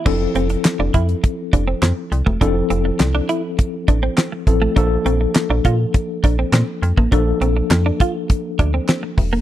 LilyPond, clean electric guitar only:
\new Staff \with { instrumentName = "Clean electric guitar" } { \time 4/4 \key f \major \tempo 4 = 102 d'16 r16 c'16 r8 d'16 e'16 r8. d'16 c'16 c'16 r8 a16 | d'16 r16 c'16 r8 d'16 e'16 r8. d'16 c'16 c'16 r8 a16 | d'16 r16 c'16 r8 d'16 f'16 r8. d'16 c'16 c'16 r8 bes16 | d'16 r16 c'16 r8 d'16 f'16 r8. d'16 c'16 c'16 r8 bes16 | }